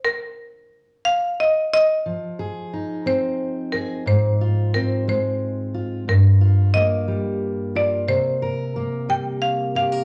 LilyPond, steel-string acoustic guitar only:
\new Staff \with { instrumentName = "Steel-string acoustic guitar" } { \time 6/8 \key f \dorian \tempo 4. = 60 << { r2. | r8 aes'8 ees'4. aes'8 | r8 f'8 c'4. f'8 | r8 f'8 bes4. f'8 |
r8 bes'8 bes4. g'16 bes'16 | } \\ { r2. | f4. c'4. | aes,4. aes4. | g,4. g4. |
c4. g4. | } >> }